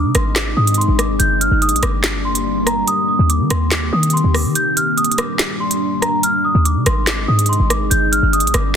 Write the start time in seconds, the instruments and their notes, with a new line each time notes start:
Already playing: ambient pad G#3 C4 D#4, celesta D6
0.04 808-style bass C3
0.15 808-style bass G#1, celesta C6, cross-stick, closed hi-hat
0.36 celesta D6, snare, clap, closed hi-hat
0.57 808-style bass G#2, celesta D#6
0.67 closed hi-hat
0.74 celesta C6, closed hi-hat
0.81 closed hi-hat
0.88 808-style bass G#1
0.99 celesta D6, cross-stick, closed hi-hat
1.09 808-style bass G1
1.19 808-style bass G1, ambient pad G3 A#3 D4, celesta G6, closed hi-hat
1.41 celesta F6, closed hi-hat
1.51 808-style bass G1
1.62 celesta D#6, closed hi-hat
1.69 808-style bass A#1, closed hi-hat
1.76 closed hi-hat
1.83 808-style bass G1, celesta D6, cross-stick, closed hi-hat
2.04 snare, clap
2.25 celesta C6
2.35 closed hi-hat
2.67 celesta A#5, cross-stick, closed hi-hat
2.87 ambient pad D#3 C4 G4, celesta D#6, closed hi-hat
3.08 celesta D#6
3.19 808-style bass D#2
3.29 celesta D6, closed hi-hat
3.40 808-style bass D#3
3.50 808-style bass D#2, celesta C6, cross-stick, closed hi-hat
3.71 celesta D6, snare, clap, closed hi-hat
3.92 808-style bass D#3, celesta D#6
4.03 closed hi-hat
4.10 celesta C6, closed hi-hat
4.17 closed hi-hat
4.24 808-style bass D#2
4.34 celesta D6, cross-stick, open hi-hat
4.45 808-style bass D#3
4.55 ambient pad G3 D4, celesta G6, closed hi-hat
4.77 celesta F6, closed hi-hat
4.97 celesta D#6, closed hi-hat
5.04 closed hi-hat
5.11 closed hi-hat
5.18 celesta D6, cross-stick, closed hi-hat
5.39 snare, clap
5.60 celesta C6
5.71 closed hi-hat
6.02 celesta A#5, cross-stick, closed hi-hat
6.23 ambient pad G#3 C4 D#4, celesta F6, closed hi-hat
6.45 celesta D#6
6.55 808-style bass D#2
6.65 celesta D6, closed hi-hat
6.76 808-style bass C3
6.86 808-style bass G#1, celesta C6, cross-stick, closed hi-hat
7.07 celesta D6, snare, clap, closed hi-hat
7.28 808-style bass G#2, celesta D#6
7.39 closed hi-hat
7.46 celesta C6, closed hi-hat
7.53 closed hi-hat
7.60 808-style bass G#1
7.70 celesta D6, cross-stick, closed hi-hat
7.81 808-style bass G1
7.91 808-style bass G1, ambient pad G3 A#3 D4, celesta G6, closed hi-hat
8.12 celesta F6, closed hi-hat
8.23 808-style bass G1
8.33 celesta D#6, closed hi-hat
8.40 808-style bass A#1, closed hi-hat
8.47 closed hi-hat
8.54 808-style bass G1, celesta D6, cross-stick, closed hi-hat